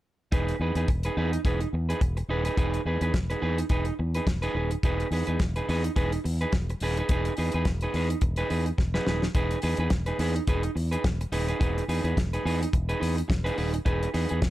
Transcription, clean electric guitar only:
0.32 D#4 G#4 B4
0.61 D#4 G#4 B4
0.77 D#4 G#4 B4
0.89 muted clean electric guitar stroke
1.05 D#4 G#4 B4
1.17 D#4 G#4 B4
1.33 muted clean electric guitar stroke
1.45 D#4 G#4 B4
1.61 muted clean electric guitar stroke
1.74 muted clean electric guitar stroke
1.89 D#4 G#4 B4
2.02 muted clean electric guitar stroke
2.17 muted clean electric guitar stroke
2.29 D#4 G#4 B4
2.45 D#4 G#4 B4
2.57 D#4 G#4 B4
2.86 D#4 G#4 B4
3.02 D#4 G#4 B4
3.30 D#4 G#4 B4
3.42 D#4 G#4 B4
3.60 muted clean electric guitar stroke
3.70 D#4 G#4 B4
3.87 muted clean electric guitar stroke
3.99 muted clean electric guitar stroke
4.15 D#4 G#4 B4
4.27 muted clean electric guitar stroke
4.42 D#4 G#4 B4
4.56 D#4 G#4 B4
4.72 muted clean electric guitar stroke
4.84 D#4 G#4 B4
5.12 D#4 G#4 B4
5.27 D#4 G#4 B4
5.56 D#4 G#4 B4
5.69 D#4 G#4 B4
5.84 muted clean electric guitar stroke
5.96 D#4 G#4 B4
6.12 muted clean electric guitar stroke
6.24 muted clean electric guitar stroke
6.41 D#4 G#4 B4
6.53 muted clean electric guitar stroke
6.70 muted clean electric guitar stroke
6.82 D#4 G#4 B4
6.99 D#4 G#4 B4
7.11 D#4 G#4 B4
7.38 D#4 G#4 B4
7.54 D#4 G#4 B4
7.67 muted clean electric guitar stroke
7.82 D#4 G#4 B4
7.95 D#4 G#4 B4
8.10 muted clean electric guitar stroke
8.23 muted clean electric guitar stroke
8.38 D#4 G#4 B4
8.50 D#4 G#4 B4
8.66 muted clean electric guitar stroke
8.78 muted clean electric guitar stroke
8.94 D#4 G#4 B4
9.08 D#4 G#4 B4
9.24 muted clean electric guitar stroke
9.35 D#4 G#4 B4
9.63 D#4 G#4 B4
9.80 D#4 G#4 B4
9.91 muted clean electric guitar stroke
10.06 D#4 G#4 B4
10.20 D#4 G#4 B4
10.36 muted clean electric guitar stroke
10.48 D#4 G#4 B4
10.64 muted clean electric guitar stroke
10.75 muted clean electric guitar stroke
10.91 D#4 G#4 B4
11.04 muted clean electric guitar stroke
11.21 muted clean electric guitar stroke
11.32 D#4 G#4 B4
11.48 D#4 G#4 B4
11.60 D#4 G#4 B4
11.89 D#4 G#4 B4
12.04 D#4 G#4 B4
12.17 muted clean electric guitar stroke
12.33 D#4 G#4 B4
12.45 D#4 G#4 B4
12.62 muted clean electric guitar stroke
12.74 muted clean electric guitar stroke
12.89 D#4 G#4 B4
13.00 D#4 G#4 B4
13.17 muted clean electric guitar stroke
13.28 muted clean electric guitar stroke
13.44 D#4 G#4 B4
13.58 D#4 G#4 B4
13.74 muted clean electric guitar stroke
13.85 D#4 G#4 B4
14.14 D#4 G#4 B4
14.29 D#4 G#4 B4
14.42 muted clean electric guitar stroke

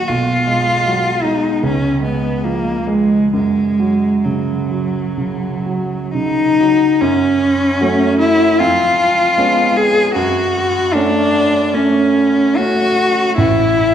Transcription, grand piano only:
Already playing: A#2 D#3 F#3
0.09 B1
0.47 G#3
0.87 F#3
1.25 G#3
1.63 C#2
2.03 G#3
2.45 F3
2.87 G#3
3.33 F#2
3.80 F#3
4.25 C#3
4.72 F#3
5.18 C#3
5.66 F#3
6.15 C#3
6.60 F#3
7.02 F#2
7.81 F#3 A3 C#4
8.60 F2
9.38 G#3 B3 C#4
10.16 F#2
10.95 A3 C#4
11.74 A3 C#4
12.58 A3 C#4
13.38 A1

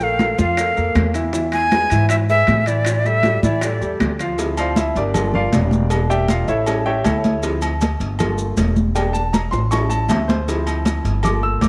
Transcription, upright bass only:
Already playing: A#1
0.38 F2
0.78 F2
0.95 E2
1.91 G#2
2.48 A2
3.42 A2
3.81 E2
4.00 D2
4.95 G1
5.53 E1
6.48 A1
7.04 D2
8.00 G1
8.57 E1
9.52 A1
10.09 D2
11.04 G1
11.62 E1

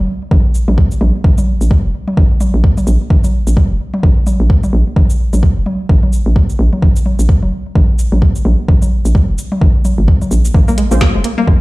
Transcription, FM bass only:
0.31 A#1
0.68 A#1
1.01 A#1
1.24 A#1
1.61 A#1
1.84 F1
2.17 A#1
2.54 A#1
2.87 A#1
3.10 A#1
3.47 A#1
3.70 F1
4.03 A#1
4.40 A#1
4.73 A#1
4.96 A#1
5.33 A#1
5.56 F1
5.89 A#1
6.26 A#1
6.59 A#1
6.82 A#1
7.19 A#1
7.42 F1
7.75 A#1
8.12 A#1
8.45 A#1
8.68 A#1
9.05 A#1
9.28 F1
9.61 A#1
9.98 G#1
10.31 A#1
10.54 A#1
10.91 A#1
11.14 F1
11.47 A#1

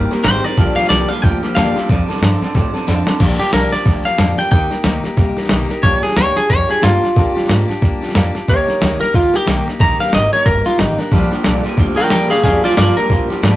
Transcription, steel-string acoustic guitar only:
Already playing: G3 C4 G4
0.10 C4 G4 A#4
0.24 D#3 G3 C4 G4 A#4
0.43 C4 G4 A#4
0.57 A#2 D3 F3 A#3 D4 G4
0.76 F3 A#3 D4 G4
0.91 A#2 D3 F3 A#3 D4 G4
1.10 F3 A#3 D4 G4
1.22 F3 A#3 D4 G4
1.42 F3 A#3 D4 G4
1.55 A#2 D3 F3 A#3 D4 G4
1.75 F3 A#3 D4 G4
1.89 F3 C4 D4 A4
2.08 C4 D4 A4
2.22 F3 C4 D4 A4
2.40 C4 D4 A4
2.54 F3 C4 D4 A4
2.74 C4 D4 A4
2.86 F3 C4 D4 A4
3.06 C4 D4 A4
3.19 A#2 D3 F3 A#3 D4 G4
3.38 F3 A#3 D4 G4
3.52 A#2 D3 F3 A#3 D4 G4
3.71 F3 A#3 D4 G4
3.85 F3 A#3 D4 G4
4.05 F3 A#3 D4 G4
4.17 A#2 D3 F3 A#3 D4 G4
4.37 F3 A#3 D4 G4
4.50 C3 D#3 A#3 D#4 G4 A#4
4.70 A#3 D#4 G4 A#4
4.84 C3 D#3 A#3 D#4 G4 A#4
5.04 A#3 D#4 G4 A#4
5.17 A#3 D#4 G4 A#4
5.37 A#3 D#4 G4 A#4
5.50 C3 D#3 A#3 D#4 G4 A#4
5.69 A#3 D#4 G4 A#4
5.84 A#3 D4 F4 G4
6.04 D4 F4 G4
6.17 A#3 D4 F4 G4
6.36 D4 F4 G4
6.49 A#3 D4 F4 G4
6.69 D4 F4 G4
6.82 A#3 D4 F4 G4
7.02 D4 F4 G4
7.15 A#3 D4 F4 G4
7.35 D4 F4 G4
7.48 A#3 D4 F4 G4
7.68 D4 F4 G4
7.81 A#3 D4 F4 G4
8.01 D4 F4 G4
8.14 A#3 D4 F4 G4
8.34 D4 F4 G4
8.48 C3 D#3 A#3 D#4 G4 A#4
8.67 A#3 D#4 G4 A#4
8.80 C3 D#3 A#3 D#4 G4 A#4
9.00 A#3 D#4 G4 A#4
9.13 A#3 D#4 G4 A#4
9.33 A#3 D#4 G4 A#4
9.46 C3 D#3 A#3 D#4 G4 A#4
9.66 A#3 D#4 G4 A#4
9.79 C3 D#3 A#3 D#4 G4 A#4
9.98 A#3 D#4 G4 A#4
10.12 C3 D#3 A#3 D#4 G4 A#4
10.32 A#3 D#4 G4 A#4
10.45 A#3 D#4 G4 A#4
10.65 A#3 D#4 G4 A#4
10.77 C3 D#3 A#3 D#4 G4 A#4
10.98 A#3 D#4 G4 A#4
11.11 A#2 F3 G3 A#3 D4 G4
11.30 G3 A#3 D4 G4
11.43 A#2 F3 G3 A#3 D4 G4
11.63 G3 A#3 D4 G4
11.77 G3 A#3 D4 G4
11.96 G3 A#3 D4 G4
12.10 A#2 F3 G3 A#3 D4 G4
12.29 G3 A#3 D4 G4
12.42 A#2 F3 G3 A#3 D4 G4
12.62 G3 A#3 D4 G4
12.76 A#2 F3 G3 A#3 D4 G4
12.96 G3 A#3 D4 G4
13.09 G3 A#3 D4 G4
13.28 G3 A#3 D4 G4
13.42 A#2 F3 G3 A#3 D4 G4

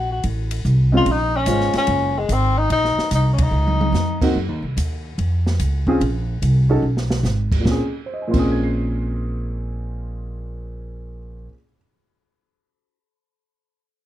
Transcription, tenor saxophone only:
0.12 F#4
0.97 F4
1.11 D#4
1.36 C#4
1.78 C#4
2.18 G#3
2.32 C4
2.58 D#4
2.72 D#4
3.15 D#4
3.33 C#4
3.43 D#4

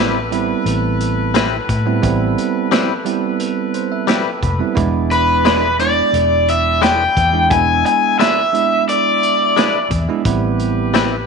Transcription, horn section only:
Already playing: A4 B4
4.75 E4 G#4 D5
7.48 E5
10.24 G4 B4

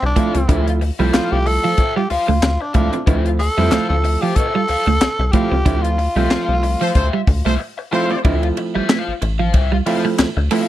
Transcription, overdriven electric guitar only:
0.03 muted overdriven electric guitar stroke
0.16 F4 C5 F5
0.35 muted overdriven electric guitar stroke
0.49 F4 C5 E5
0.67 muted overdriven electric guitar stroke
0.81 muted overdriven electric guitar stroke
0.99 F4 C5 E5
1.13 F4 C5 F5
1.46 muted overdriven electric guitar stroke
1.64 F4 C5 F5
1.78 F4 C5 E5
1.96 muted overdriven electric guitar stroke
2.10 F4 C5 F5
2.28 muted overdriven electric guitar stroke
2.42 muted overdriven electric guitar stroke
2.61 muted overdriven electric guitar stroke
2.74 F4 C5 F5
2.92 muted overdriven electric guitar stroke
3.06 F4 C5 E5
3.25 muted overdriven electric guitar stroke
3.39 muted overdriven electric guitar stroke
3.57 F4 C5 E5
3.72 F4 C5 F5
4.04 muted overdriven electric guitar stroke
4.22 F4 C5 F5
4.37 F4 C5 E5
4.54 muted overdriven electric guitar stroke
4.68 F4 C5 F5
4.87 muted overdriven electric guitar stroke
5.01 muted overdriven electric guitar stroke
5.20 muted overdriven electric guitar stroke
5.33 F4 C5 F5
5.52 muted overdriven electric guitar stroke
5.66 F4 C5 E5
5.84 muted overdriven electric guitar stroke
5.98 muted overdriven electric guitar stroke
6.16 F4 C5 E5
6.30 F4 C5 F5
6.63 muted overdriven electric guitar stroke
6.81 F4 C5 F5
6.95 F4 C5 E5
7.27 muted overdriven electric guitar stroke
7.45 F4 C5 E5
7.59 muted overdriven electric guitar stroke
7.78 muted overdriven electric guitar stroke
7.92 F4 C5 F5
8.10 muted overdriven electric guitar stroke
8.25 F4 C5 E5
8.43 muted overdriven electric guitar stroke
8.57 muted overdriven electric guitar stroke
8.75 F4 C5 E5
8.89 F4 C5 F5
9.22 muted overdriven electric guitar stroke
9.39 F4 C5 F5
9.53 F4 C5 E5
9.72 muted overdriven electric guitar stroke
9.86 F4 C5 F5
10.04 muted overdriven electric guitar stroke
10.18 muted overdriven electric guitar stroke
10.37 muted overdriven electric guitar stroke
10.51 F4 C5 F5

